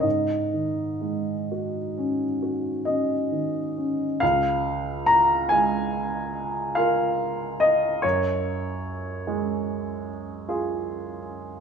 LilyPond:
\new Staff \with { instrumentName = "Grand piano" } { \time 9/8 \key des \major \tempo 4. = 47 << { ees''2. ees''4. | f''4 bes''8 aes''4. f''4 ees''8 | des''2~ des''8 r2 | } \\ { aes,8 ees8 aes8 ges'8 des'8 ges'8 des'8 ees8 des'8 | des,4. aes4. <f' bes'>4. | ges,4. aes4. <f' aes'>4. | } >> }